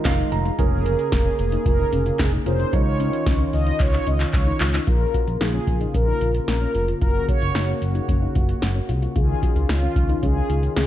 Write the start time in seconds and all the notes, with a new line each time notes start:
Already playing: D#3 G#3 D#4 F4 A#4
0.05 F1 C#4 F5, kick, snare, clap, closed hi-hat
0.18 D#4
0.32 F1 F4 A#5, closed hi-hat
0.45 D#4, closed hi-hat
0.59 F1 C#3 A#3 C#4 F4 G#4 A#4, kick, closed hi-hat
0.85 C#4, closed hi-hat
0.99 closed hi-hat
1.12 F1 C#4, kick, snare, closed hi-hat
1.26 C#4
1.39 F1, closed hi-hat
1.52 D#4, closed hi-hat
1.66 F1 F4 A#4, kick, closed hi-hat
1.79 D#4
1.93 F1 C#4, closed hi-hat
2.06 F4, closed hi-hat
2.19 F1 C#4 G#4, kick, snare, clap, closed hi-hat
2.33 D#4
2.46 F1 C#4 F4 G#4 A#4 C5, closed hi-hat
2.60 D#4, closed hi-hat
2.73 C#2 D#3 C#4 D#4 F4 C#5, kick, closed hi-hat
3.00 C#4, closed hi-hat
3.13 closed hi-hat
3.26 C#2 C#4, kick, snare, closed hi-hat
3.40 C#4
3.53 C#2 D#5, open hi-hat
3.66 D#4, closed hi-hat
3.80 C#2 F4 C#5, kick, clap, closed hi-hat
3.93 D#4, clap
4.07 C#2 C#4 D#5, closed hi-hat
4.20 F4, clap, closed hi-hat
4.34 C#2 C#4 C#5, kick, clap, closed hi-hat
4.47 D#4
4.60 C#2 F4, clap, open hi-hat
4.74 D#4, clap, closed hi-hat
4.87 A#1 C#3 A#3 F4 A#4, kick, closed hi-hat
5.14 F#4, kick, closed hi-hat
5.27 A#1 F4, closed hi-hat
5.41 A#1 D#4 G#4, snare, closed hi-hat
5.54 C#4
5.67 A#1, kick, closed hi-hat
5.81 D#4, closed hi-hat
5.94 A#1 C#4 A#4, kick, closed hi-hat
6.08 D#4
6.21 A#1 F4, closed hi-hat
6.34 closed hi-hat
6.48 A#1 C#4 A#4, snare, closed hi-hat
6.61 C#4
6.75 F1 F4, closed hi-hat
6.88 F4, closed hi-hat
7.01 F#1 F4 F#4 A#4, kick, closed hi-hat
7.28 F#4 C#5, kick, closed hi-hat
7.42 F#1 F4, closed hi-hat
7.55 F#1 D#4, snare, closed hi-hat
7.68 C#4
7.82 F#1, closed hi-hat
7.95 D#4, closed hi-hat
8.08 F#1 C#4, kick, closed hi-hat
8.22 D#4
8.35 F#1 F4, kick, closed hi-hat
8.49 closed hi-hat
8.62 F#1 C#4, snare, closed hi-hat
8.76 C#4
8.89 C2 F4, closed hi-hat
9.02 F4, closed hi-hat
9.16 C#2 D#3 C#4 F4 G#4, kick, closed hi-hat
9.43 F#4, kick, closed hi-hat
9.56 C#2 F4, closed hi-hat
9.69 C#2 D#4 F4, snare, closed hi-hat
9.83 C#4
9.96 C#2, kick, closed hi-hat
10.09 D#4, closed hi-hat
10.23 C#2 C#4 G#4, kick, closed hi-hat
10.36 D#4
10.50 C#2 F4, closed hi-hat
10.63 closed hi-hat
10.76 C#2 C#4 G#4, snare, closed hi-hat